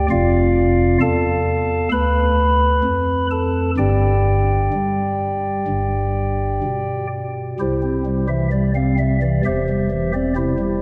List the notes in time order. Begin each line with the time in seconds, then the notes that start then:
0.10 F1 F2 F4 D5 F5
1.01 E2 A4 F5 A5
1.92 D2 B4 B5
2.84 F2
3.31 A4 A5
3.77 G1 G2 G4 D5 G5
4.73 G3
5.67 G1 G2
6.63 B2
7.59 C2 C3 E4 G4 C5
7.82 C4
8.05 G3
8.28 E3 E5
8.52 G3 D5
8.75 C4 F5
8.98 G3 E5
9.22 E3 D5
9.45 E1 E2 G4 C5 E5
9.69 G3
9.91 E3
10.14 C4 D5
10.36 C3 E4 G4 C5
10.58 G3